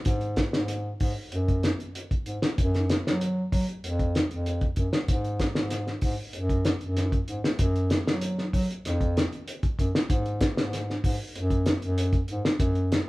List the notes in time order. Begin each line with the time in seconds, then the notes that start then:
0.05 G#2, kick, closed hi-hat
0.21 closed hi-hat
0.36 kick, snare, closed hi-hat
0.53 G#2, snare
0.68 closed hi-hat
1.00 G#2, kick, open hi-hat
1.32 F#2, closed hi-hat
1.48 kick, closed hi-hat
1.63 snare, closed hi-hat
1.80 closed hi-hat
1.95 closed hi-hat
2.11 kick, closed hi-hat
2.26 G#2, closed hi-hat
2.42 snare
2.58 F#2, kick, closed hi-hat
2.74 snare, closed hi-hat
2.90 snare, closed hi-hat
3.06 F#3, snare
3.21 closed hi-hat
3.52 F#3, kick, open hi-hat
3.69 closed hi-hat
3.84 F2, closed hi-hat
3.99 kick, closed hi-hat
4.15 snare, closed hi-hat
4.31 F2, closed hi-hat
4.46 closed hi-hat
4.61 kick, closed hi-hat
4.76 F#2, kick, closed hi-hat
4.93 snare
5.08 G#2, kick, closed hi-hat
5.24 closed hi-hat
5.39 kick, snare, closed hi-hat
5.55 G#2, snare
5.70 snare, closed hi-hat
5.87 snare
6.01 G#2, kick, open hi-hat
6.33 F#2, closed hi-hat
6.49 kick, closed hi-hat
6.65 snare, closed hi-hat
6.81 F#2, closed hi-hat
6.97 snare, closed hi-hat
7.12 kick, closed hi-hat
7.28 G#2, closed hi-hat
7.44 snare
7.59 F#2, kick, closed hi-hat
7.76 closed hi-hat
7.90 snare, closed hi-hat
8.07 F#3, snare
8.21 closed hi-hat
8.38 snare
8.53 F#3, kick, open hi-hat
8.70 closed hi-hat
8.85 F2, snare, closed hi-hat
9.01 kick, closed hi-hat
9.17 snare, closed hi-hat
9.33 closed hi-hat
9.48 closed hi-hat
9.63 kick, closed hi-hat
9.79 F#2, kick, closed hi-hat
9.95 snare
10.09 G#2, kick, closed hi-hat
10.26 closed hi-hat
10.41 kick, snare, closed hi-hat
10.57 G#2, snare
10.73 snare, closed hi-hat
10.90 snare
11.04 G#2, kick, open hi-hat
11.35 F#2, closed hi-hat
11.50 kick, closed hi-hat
11.66 snare, closed hi-hat
11.82 F#2, closed hi-hat
11.98 closed hi-hat
12.13 kick, closed hi-hat
12.28 G#2, closed hi-hat
12.45 snare
12.59 F#2, kick, closed hi-hat
12.75 closed hi-hat
12.92 snare, closed hi-hat